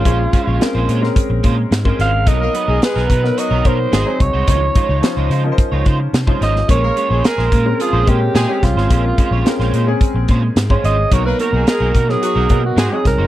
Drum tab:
HH |x-x-x-x-x-x-x-x-|x-x-x-x-x-x-x-x-|x-x-x-x-x-x-x-x-|x-x-x-x-x-x-x-x-|
SD |----o--o----o-o-|----oo-o----o---|----o-------o-oo|----oo------o-oo|
BD |o-o-----o-o--o--|o-----o---o---o-|o-o-----o-o--o--|o-----o---o---o-|

HH |x-x-x-x-x-x-x-x-|x-x-x-x-x-x-x-x-|
SD |----oo------o---|----o--o----o-o-|
BD |o-o-----o-o--o--|o-----o---o---o-|